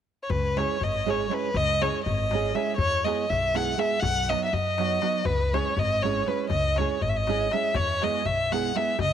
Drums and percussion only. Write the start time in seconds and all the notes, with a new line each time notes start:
0.30 darbuka dum
0.45 darbuka tek
0.57 darbuka tek
0.70 darbuka tek
0.81 darbuka dum
0.95 darbuka tek
1.08 darbuka tek
1.31 darbuka tek
1.43 darbuka tek
1.55 darbuka dum
1.69 darbuka tek
1.81 darbuka tek
1.94 darbuka tek
2.06 darbuka dum
2.19 darbuka tek
2.31 darbuka tek
2.55 darbuka tek
2.67 darbuka tek
2.78 darbuka dum
2.93 darbuka tek
3.06 darbuka tek
3.30 darbuka dum
3.43 darbuka tek
3.55 darbuka tek
3.79 darbuka tek
3.91 darbuka tek
4.03 darbuka dum
4.16 darbuka tek
4.30 darbuka tek
4.53 darbuka dum
4.67 darbuka tek
4.78 darbuka tek
4.90 darbuka tek
5.02 darbuka tek
5.15 darbuka tek
5.25 darbuka dum
5.40 darbuka tek
5.54 darbuka tek
5.66 darbuka tek
5.77 darbuka dum
5.90 darbuka tek
6.03 darbuka tek
6.26 darbuka tek
6.39 darbuka tek
6.50 darbuka dum
6.62 darbuka tek
6.76 darbuka tek
6.90 darbuka tek
7.01 darbuka dum
7.14 darbuka tek
7.27 darbuka tek
7.51 darbuka tek
7.63 darbuka tek
7.74 darbuka dum
7.88 darbuka tek
8.02 darbuka tek
8.14 darbuka tek
8.25 darbuka dum
8.39 darbuka tek
8.52 darbuka tek
8.76 darbuka tek
8.88 darbuka tek
8.99 darbuka dum